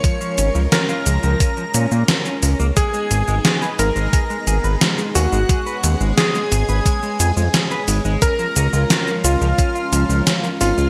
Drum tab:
HH |x-x-x-x-x-x-x-o-|x-x-x-x-x-x-x-o-|x-x-x-x-x-x-x-o-|x-x-x-x-x-x-x-o-|
SH |xxxxxxxxxxxxxxxx|xxxxxxxxxxxxxxxx|xxxxxxxxxxxxxxxx|xxxxxxxxxxxxxxxx|
SD |----o-------o---|----o-------o---|----o-------o---|----o-------o---|
BD |o-------o-------|o-------o-------|o-------o-------|o-------o-------|